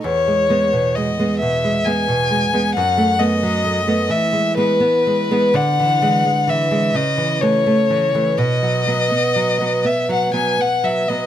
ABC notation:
X:1
M:6/8
L:1/16
Q:3/8=43
K:E
V:1 name="Violin"
c4 d2 e2 g4 | f2 d4 e2 B4 | f4 e2 d2 c4 | d6 e f g f e d |]
V:2 name="Nylon-string guitar" clef=bass
E,, G, [G,B,] B,, G, [G,B,] B,, G, [G,B,] B,, G, [G,B,] | F,, A, [A,B,] F, A, [A,B,] E, G, [G,B,] B, G, [G,B,] | =D, E, [E,G,] G, E, [E,G,] C, E, [E,A,] A, E, [E,A,] | B,, F, [F,B,] B, F, [F,B,] B, F, [F,B,] B, F, [F,B,] |]